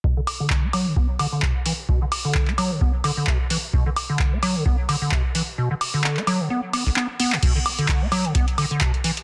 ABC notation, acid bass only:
X:1
M:4/4
L:1/16
Q:"Swing 16ths" 1/4=130
K:Bm
V:1 name="Acid bass" clef=bass
B,, D, z D,2 B, F, D, B, z D, D, B,, z E, z | B,, D, z D,2 B, F, D, B, z D, D, B,, z E, z | B,, D, z D,2 B, F, D, B, z D, D, B,, z E, z | B,, D, z D,2 B, F, D, B, z B, B,,, B, z B, B,, |
B,, D, z D,2 B, F, D, B, z D, D, B,, z E, z |]